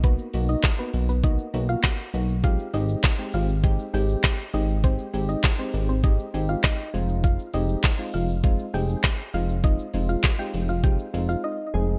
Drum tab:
HH |x-o-x-o-x-o-x-o-|x-o-x-o-x-o-x-o-|x-o-x-o-x-o-x-o-|x-o-x-o-x-o-x-o-|
SH |xxxxxxxxxxxxxxxx|xxxxxxxxxxxxxxxx|xxxxxxxxxxxxxxxx|xxxxxxxxxxxxxxxx|
CP |----x-------x---|----x-------x---|----x-------x---|----x-------x---|
SD |----o-------o---|----o-------o---|----o-------o---|----o-------o---|
BD |o---o---o---o---|o---o---o---o---|o---o---o---o---|o---o---o---o---|

HH |x-o-x-o-x-o-----|
SH |xxxxxxxxxxxx----|
CP |----x-----------|
SD |----o-----------|
BD |o---o---o-------|